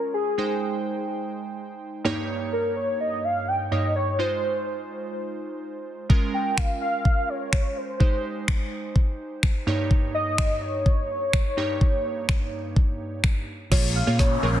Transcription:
0.00 0.34 G#3 medium
0.00 0.35 C#4 medium
0.00 0.35 F4 medium
0.00 0.13 A#4 loud
0.00 0.35 A#4 medium
0.14 1.06 G#4 medium
0.38 2.01 G#3 medium
0.38 2.02 D#4 medium
0.38 2.02 C5 medium
0.38 2.02 G5 medium
2.04 3.68 G2 medium
2.04 3.68 A#3 medium
2.04 3.68 D#4 medium
2.04 3.68 G4 medium
2.04 3.69 C#5 medium
2.53 2.75 A#4 medium
2.76 2.99 C#5 medium
3.01 3.26 D#5 medium
3.24 3.49 F5 loud
3.48 3.71 G5 loud
3.72 4.19 G2 soft
3.72 4.19 A#3 soft
3.72 4.18 D#4 soft
3.72 4.19 G4 soft
3.72 4.20 C#5 medium
3.72 3.94 D#5 loud
3.96 4.21 C#5 medium
4.19 6.06 G#3 medium
4.19 6.06 D#4 medium
4.19 6.06 F4 medium
4.19 5.15 C5 medium
4.19 6.06 C5 medium
6.09 7.96 G#3 medium
6.09 7.96 C#4 medium
6.09 7.97 F4 medium
6.09 7.97 A#4 medium
6.09 kick loud
6.34 6.59 G5 loud
6.58 6.81 F5 loud
6.58 finger snap loud
6.58 kick loud
6.81 7.31 F5 loud
7.05 kick loud
7.29 7.78 C#5 loud
7.53 finger snap loud
7.53 kick loud
7.77 8.72 C5 medium
8.00 9.63 G#3 medium
8.00 9.64 D#4 medium
8.00 9.64 G4 medium
8.00 9.64 C5 medium
8.00 kick loud
8.48 finger snap loud
8.48 kick loud
8.96 kick loud
9.43 finger snap loud
9.43 kick loud
9.67 11.53 G2 medium
9.67 11.54 A#3 medium
9.67 11.54 D#4 medium
9.67 11.54 G4 medium
9.67 11.54 C#5 medium
9.91 kick loud
10.14 10.63 D#5 loud
10.38 finger snap loud
10.38 kick loud
10.62 13.24 C#5 loud
10.86 kick loud
11.33 finger snap loud
11.33 kick loud
11.57 13.44 G2 medium
11.57 13.44 A#3 medium
11.57 13.44 D#4 medium
11.57 13.44 G4 medium
11.57 13.44 C#5 medium
11.81 kick loud
12.29 finger snap loud
12.29 kick loud
12.76 kick loud
13.24 finger snap loud
13.24 kick loud
13.71 14.00 A#1 loud
13.71 14.60 G#3 medium
13.71 13.93 A#3 medium
13.71 14.60 A#3 medium
13.71 14.60 C#4 medium
13.71 13.93 F4 medium
13.71 13.93 G#4 medium
13.71 13.93 C#5 medium
13.71 kick loud
13.71 snare medium
13.71 crash medium
13.71 riser medium
13.95 14.18 F5 loud
14.07 14.36 A#2 medium
14.07 14.28 A#3 medium
14.07 14.28 F4 medium
14.07 14.28 G#4 medium
14.07 14.28 C#5 medium
14.19 14.42 C#5 loud
14.19 kick loud
14.19 snare medium
14.43 14.60 A#1 medium
14.43 14.57 A#3 medium
14.43 14.57 F4 medium
14.43 14.57 G#4 medium
14.43 14.57 A#4 medium
14.43 14.52 C#5 medium
14.50 14.59 C5 medium

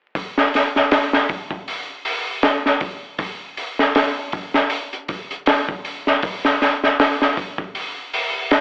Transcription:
0.15 kick medium
0.15 open hi-hat medium
0.38 snare soft
0.54 snare soft
0.54 open hi-hat medium
0.76 snare soft
0.91 snare medium
0.91 open hi-hat medium
1.13 snare medium
1.29 kick medium
1.29 open hi-hat medium
1.51 kick medium
1.68 open hi-hat medium
2.05 open hi-hat medium
2.43 snare loud
2.43 open hi-hat medium
2.66 snare soft
2.80 kick medium
2.80 open hi-hat medium
3.18 kick medium
3.18 open hi-hat medium
3.57 open hi-hat medium
3.79 snare soft
3.95 snare loud
3.95 open hi-hat medium
4.32 kick medium
4.32 open hi-hat medium
4.54 snare soft
4.70 open hi-hat medium
4.93 closed hi-hat soft
5.08 kick medium
5.08 open hi-hat medium
5.31 closed hi-hat soft
5.46 snare medium
5.46 open hi-hat medium
5.69 kick medium
5.85 open hi-hat medium
6.07 snare soft
6.22 kick loud
6.22 open hi-hat medium
6.45 snare soft
6.62 snare soft
6.62 open hi-hat medium
6.83 snare soft
7.00 snare loud
7.00 open hi-hat medium
7.22 snare medium
7.37 kick medium
7.37 open hi-hat medium
7.58 kick medium
7.75 open hi-hat medium
8.13 open hi-hat medium
8.51 snare medium
8.51 open hi-hat medium

